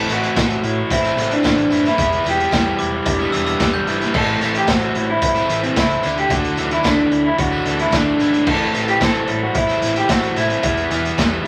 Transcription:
Already playing: A2 E4 A4
0.08 A1 E3 A3 C4 E4, closed hi-hat, tambourine
0.13 F#4
0.22 A3 C4 E4, closed hi-hat
0.35 A1 A2 E3 A3 C4 E4, kick, snare, closed hi-hat, tambourine
0.49 A3 C4 E4, closed hi-hat
0.62 A1 E4, muted overdriven electric guitar stroke, closed hi-hat
0.90 A1 C4 E4, kick, closed hi-hat
1.03 A3 C4 E4, closed hi-hat, tambourine
1.16 A1 E3 A3 C4 E4, closed hi-hat, tambourine
1.31 D4, closed hi-hat
1.43 A1 A2 E3 A3 C4, kick, snare, closed hi-hat, tambourine
1.47 E4
1.57 A3 C4 E4, closed hi-hat, tambourine
1.70 F#1 E3 A3 C4, closed hi-hat, tambourine
1.74 E4
1.84 A3 C4 E4, snare, closed hi-hat
1.97 E1 E2 E3 G3 B3 E4, kick, closed hi-hat
2.02 E4
2.12 closed hi-hat, tambourine
2.24 E1 E3 G3 B3, closed hi-hat, tambourine
2.29 E4 G4
2.37 E4, closed hi-hat, tambourine
2.41 G3 B3
2.51 E1 E3 G3 B3, kick, snare, closed hi-hat, tambourine
2.55 E4
2.65 G3 B3 E4
2.79 E1 E4 D6, muted overdriven electric guitar stroke, closed hi-hat, tambourine
3.06 E1 D4, kick, closed hi-hat, tambourine
3.19 G3 B3 E4, tambourine
3.32 E1 E3 G3 B3 E4 E6, closed hi-hat, tambourine
3.46 E6, closed hi-hat
3.59 E1 E3 G3 B3 E4, kick, snare, closed hi-hat, tambourine
3.74 G3 B3 E4 G6
3.87 G1 E3 G3 B3 E4, closed hi-hat, tambourine
4.00 G3 B3 E4, snare, closed hi-hat
4.13 A1 A2 E3 A3 C4 E4 A4, kick, tambourine, crash
4.28 tambourine
4.41 A1 E3 A3 C4 E4, closed hi-hat, tambourine
4.54 A3 C4 E4 G4, closed hi-hat
4.67 A1 A2 E3 A3 C4 E4 F#4, kick, snare, closed hi-hat, tambourine
4.81 C4 E4, closed hi-hat
4.86 A3
4.95 A1 E4, muted overdriven electric guitar stroke, closed hi-hat
5.10 E4
5.22 A1 E4, kick, closed hi-hat
5.35 A3 C4 E4, closed hi-hat, tambourine
5.49 A1 E3 A3 C4 E4, closed hi-hat, tambourine
5.63 C4, closed hi-hat
5.75 C#2 A2 E3 A3 C4 E4, kick, snare, closed hi-hat, tambourine
5.89 C4 E4, closed hi-hat, tambourine
5.93 A3
6.02 D2 D3 A3 D4 E4, closed hi-hat, tambourine
6.15 A3 D4 E4 G4, closed hi-hat
6.29 D2 D3 A3 D4 E4 F#4, kick, closed hi-hat, tambourine
6.43 closed hi-hat, tambourine
6.56 D2 D3 E3 A3 D4 E4, closed hi-hat, tambourine
6.70 A3 D4 E4, closed hi-hat
6.83 D2 D3 A3 D4, kick, snare, closed hi-hat, tambourine
6.88 E4
6.98 A3 D4 E4
7.11 D2 E4, muted overdriven electric guitar stroke, closed hi-hat
7.26 E4
7.39 D2 D4 F#4, kick, closed hi-hat
7.51 A3 D4 E4, tambourine
7.64 D2 D3 E3 A3 D4 E4, closed hi-hat, tambourine
7.79 E4, closed hi-hat
7.91 D2 D3 A3 D4 E4, kick, snare, closed hi-hat, tambourine
8.05 A3 D4 E4, tambourine
8.19 G#1 D3 A3 D4 E4, closed hi-hat, tambourine
8.32 A3 D4 E4, closed hi-hat
8.45 A1 A2 E3 A3 C4 E4 A4, kick, tambourine, crash
8.61 tambourine
8.72 A1 E3 A3 C4 E4, closed hi-hat, tambourine
8.85 A3 C4 E4 G4, closed hi-hat, tambourine
8.99 A1 A2 E3 A3 C4 E4, kick, snare, closed hi-hat, tambourine
9.03 A4
9.14 A3 C4 E4, closed hi-hat
9.28 A1 E4, muted overdriven electric guitar stroke, closed hi-hat
9.43 F#4
9.54 A1 E4, kick, closed hi-hat
9.67 C4 E4, closed hi-hat, tambourine
9.71 A3
9.81 A1 E3 A3 C4 E4, closed hi-hat, tambourine
9.96 G4, closed hi-hat
10.08 A1 A2 E3 A3 C4 E4 F#4, kick, snare, closed hi-hat, tambourine
10.20 A3 C4 E4, closed hi-hat
10.24 tambourine
10.34 A1 E3 A3 C4 E4, closed hi-hat, tambourine
10.39 E4
10.49 A3 C4 E4, closed hi-hat
10.63 E1 E2 E3 G3 B3 E4, kick, closed hi-hat, tambourine
10.77 closed hi-hat, tambourine
10.90 E1 E3 G3 B3 E4, closed hi-hat, tambourine
11.03 G3 B3 E4, closed hi-hat
11.17 E1 E3 G3 B3 E4, kick, snare, closed hi-hat, tambourine
11.29 G3 B3 E4
11.44 muted overdriven electric guitar stroke

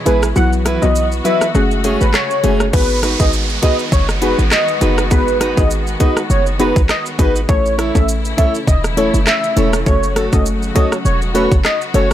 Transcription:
Already playing: B2 E3 G#3 E4
0.06 A1 G#3 B3 E4 G#4 B4, closed hi-hat, shaker
0.23 cross-stick, shaker
0.36 B1 E3 F#3 B3 E4 F#4 F#5, shaker
0.53 shaker
0.65 E4 F#4 B4, cross-stick, closed hi-hat, shaker
0.82 B1 F#3 B3 E4 F#4 D#5, shaker
0.95 shaker
1.12 shaker
1.24 F#3 B3 E4 F#4 B4 E5, closed hi-hat, shaker
1.41 cross-stick, shaker
1.54 F#1 C#3 G#3 A3 C#4 F#4 G#4 F#5, shaker
1.71 muted steel-string acoustic guitar stroke, shaker
1.84 A3 C#4 F#4 G#4, closed hi-hat, shaker
2.01 G#1 B4, shaker
2.14 C#5, cross-stick, clap, shaker
2.31 shaker
2.43 F#1 A3 C#4 F#4 G#4, closed hi-hat, shaker
2.60 cross-stick, shaker
2.73 G#1 D#3 G#3 B3 D#4 F#4 G#4 B4, kick, crash, downlifter, shaker
2.90 shaker
3.03 D#4 F#4 B4, cross-stick, closed hi-hat, shaker
3.20 G#1 B3 D#4 F#4 G#4 D#5, kick, shaker
3.33 shaker
3.49 shaker
3.62 B3 D#4 F#4 G#4 B4 D#5, kick, closed hi-hat, shaker
3.79 shaker
3.92 F#1 C#5, kick, shaker
4.09 muted steel-string acoustic guitar stroke, cross-stick, shaker
4.22 B3 D#4 F#4 G#4 B4, closed hi-hat, shaker
4.39 G#1, shaker
4.51 D#5, cross-stick, clap, shaker
4.68 shaker
4.81 F#1 B3 D#4 F#4 G#4 B4, closed hi-hat, shaker
4.98 cross-stick, shaker
5.11 G#1 B3 D#4 F#4 G#4 B4, kick, shaker
5.28 shaker
5.41 D#4 F#4 B4, cross-stick, closed hi-hat, shaker
5.57 G#1 B3 D#4 F#4 G#4 D#5, kick, shaker
5.71 shaker
5.87 shaker
6.00 B3 D#4 F#4 G#4 B4 D#5, kick, closed hi-hat, shaker
6.17 cross-stick, shaker
6.30 F#1 C#5, shaker
6.46 muted steel-string acoustic guitar stroke, shaker
6.59 B3 D#4 F#4 G#4 B4, closed hi-hat, shaker
6.76 G#1, kick, shaker
6.89 D#5, cross-stick, clap, shaker
7.06 shaker
7.19 G#1 B3 D#4 F#4 G#4 B4, kick, closed hi-hat, shaker
7.36 shaker
7.49 A1 C#3 E3 A3 C#4 E4 A4 C#5, kick, shaker
7.66 shaker
7.78 E4 A4 C#5, cross-stick, closed hi-hat, shaker
7.95 A1 A3 C#4 E4 A4 E5, kick, shaker
8.08 shaker
8.25 shaker
8.37 A3 C#4 E4 A4 C#5 E5, kick, closed hi-hat, shaker
8.55 shaker
8.67 E1 D#5, kick, shaker
8.84 muted steel-string acoustic guitar stroke, cross-stick, shaker
8.97 A3 C#4 E4 A4 C#5, closed hi-hat, shaker
9.14 F#1, shaker
9.27 E5, cross-stick, clap, shaker
9.44 shaker
9.56 E1 A3 C#4 E4 A4 C#5, closed hi-hat, shaker
9.73 cross-stick, shaker
9.86 F#1 F#3 A3 C#4 F#4 A4 C#5, kick, shaker
10.03 shaker
10.16 F#4 A4 C#5, cross-stick, closed hi-hat, shaker
10.32 F#1 A3 C#4 F#4 A4 D#5, kick, shaker
10.46 shaker
10.62 shaker
10.75 A3 C#4 F#4 A4 C#5 D#5, kick, closed hi-hat, shaker
10.92 cross-stick, shaker
11.05 E1 C#5, shaker
11.22 muted steel-string acoustic guitar stroke, shaker
11.34 A3 C#4 F#4 A4 B4 C#5, closed hi-hat, shaker
11.52 F#1, kick, shaker
11.64 D#5, cross-stick, clap, shaker
11.81 shaker
11.94 F#1 A3 C#4 F#4 A4 C#5, closed hi-hat, shaker

